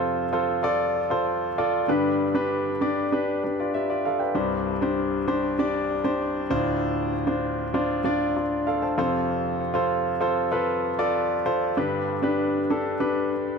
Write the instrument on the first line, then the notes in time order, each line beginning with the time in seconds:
grand piano
Already playing: F2 C3 F4 A4 C5
0.33 F4 A4 C5
0.63 F4 A4 D5
1.10 F4 A4 C5
1.58 F4 A4 D5
1.88 G2 D3 D4 G4 B4
2.35 D4 G4 B4
2.81 D4 G4 D5
3.12 D4 G4 B4
3.44 D4 B4
3.60 F4 D5
3.74 G4 E5
3.90 F4 D5
4.05 A4 F5
4.19 B4 G5
4.35 C2 G2 D4 G4 C5
4.82 D4 G4 C5
5.28 D4 G4 C5
5.59 D4 G4 D5
6.04 D4 G4 C5
6.50 D2 A2 D4 F4 C5
7.27 D4 F4 C5
7.74 D4 F4 C5
8.04 D4 F4 D5
8.36 F4 D5
8.67 A4 F5
8.82 C5 A5
8.98 F2 C3 F4 A4 C5
9.74 F4 A4 C5
10.21 F4 A4 C5
10.52 F4 A4 B4
10.99 F4 A4 D5
11.46 F4 A4 C5
11.77 G2 D3 D4 G4 B4
12.23 D4 G4 B4
12.70 D4 G4 A4
13.00 D4 G4 B4